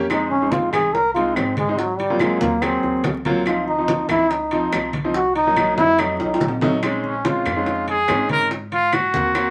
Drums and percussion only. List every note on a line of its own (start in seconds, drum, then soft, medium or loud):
0.10 high bongo medium
0.10 high conga soft
0.10 high timbale medium
0.10 claves medium
0.31 high conga soft
0.52 high bongo medium
0.52 high conga loud
0.52 high timbale medium
0.73 low conga medium
0.73 high timbale loud
0.73 claves medium
0.94 high bongo medium
0.94 high conga soft
1.15 high conga soft
1.15 high timbale medium
1.36 high bongo medium
1.36 low bongo medium
1.36 high conga soft
1.36 high timbale medium
1.36 claves medium
1.57 high conga medium
1.57 high timbale medium
1.78 high bongo medium
1.78 high conga soft
1.99 high bongo soft
1.99 high conga soft
1.99 high timbale medium
2.19 high bongo medium
2.19 high conga medium
2.19 high timbale medium
2.19 claves medium
2.41 high conga loud
2.62 high bongo medium
2.62 high conga soft
2.62 high timbale medium
2.62 claves medium
2.83 high bongo soft
2.83 high conga soft
3.04 high bongo medium
3.04 low bongo medium
3.04 high conga medium
3.04 high timbale medium
3.04 low timbale medium
3.25 high bongo soft
3.25 high conga medium
3.25 high timbale medium
3.46 high bongo medium
3.46 high conga soft
3.46 high timbale medium
3.46 claves medium
3.68 high conga soft
3.88 high bongo medium
3.88 high conga medium
3.88 high timbale medium
4.09 low conga medium
4.09 high timbale loud
4.09 claves medium
4.30 high bongo medium
4.30 high conga soft
4.51 high conga soft
4.51 high timbale medium
4.73 high bongo medium
4.73 low bongo medium
4.73 high conga soft
4.73 high timbale loud
4.73 claves medium
4.93 high conga medium
4.93 high timbale medium
5.14 high bongo medium
5.14 high conga soft
5.35 high bongo soft
5.35 high conga soft
5.35 high timbale medium
5.56 high bongo medium
5.56 high conga medium
5.56 high timbale loud
5.56 claves medium
5.78 high conga loud
5.98 high bongo medium
5.98 high conga soft
5.98 high timbale loud
5.98 claves medium
6.20 high bongo soft
6.20 high conga soft
6.20 high timbale medium
6.34 high timbale medium
6.41 high bongo medium
6.41 low bongo medium
6.41 high conga medium
6.48 low timbale medium
6.61 high bongo soft
6.61 high conga medium
6.61 low timbale medium
6.83 high bongo medium
6.83 high conga soft
6.83 high timbale medium
6.83 claves medium
7.04 high conga soft
7.25 high bongo medium
7.25 high conga medium
7.25 high timbale medium
7.46 low conga medium
7.46 high timbale medium
7.46 claves medium
7.66 high bongo medium
7.66 high conga soft
7.88 high conga soft
7.88 high timbale medium
8.08 high bongo medium
8.08 low bongo medium
8.08 high conga soft
8.08 high timbale medium
8.08 low timbale medium
8.08 claves medium
8.29 high conga medium
8.29 high timbale medium
8.51 high bongo medium
8.51 high conga soft
8.72 high bongo soft
8.72 high conga soft
8.72 high timbale medium
8.92 high bongo medium
8.92 high conga medium
8.92 high timbale medium
8.92 claves medium
9.14 high conga loud
9.35 high bongo medium
9.35 high conga soft
9.35 high timbale loud
9.35 claves medium